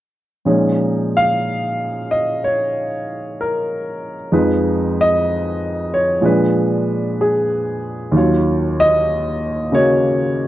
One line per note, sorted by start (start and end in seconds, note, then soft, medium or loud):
0.45 4.32 A#2 soft
0.45 4.32 F3 soft
0.45 4.30 G#3 soft
0.45 4.32 C#4 soft
0.45 4.32 D#4 soft
0.45 2.43 C#5 soft
1.17 2.14 F5 medium
2.11 2.43 D#5 medium
2.44 3.41 C#5 medium
3.41 4.14 A#4 medium
4.32 6.23 F2 soft
4.32 6.20 F3 soft
4.32 6.22 G#3 soft
4.32 6.24 D#4 soft
4.32 6.24 B4 soft
5.01 5.90 D#5 medium
5.94 6.26 C#5 medium
6.21 8.13 A#2 soft
6.21 8.14 F3 soft
6.21 8.14 G#3 soft
6.21 8.15 D4 soft
6.25 8.15 B4 soft
7.21 7.95 G#4 medium
8.12 10.48 D#2 soft
8.12 10.48 D#3 soft
8.12 10.48 F#3 soft
8.16 10.48 F4 soft
8.16 9.73 C#5 soft
8.80 9.74 D#5 loud
9.72 10.48 C#3 soft
9.72 10.48 A#3 soft
9.72 10.48 F#4 soft
9.72 10.04 C#5 medium
9.76 10.48 D#5 soft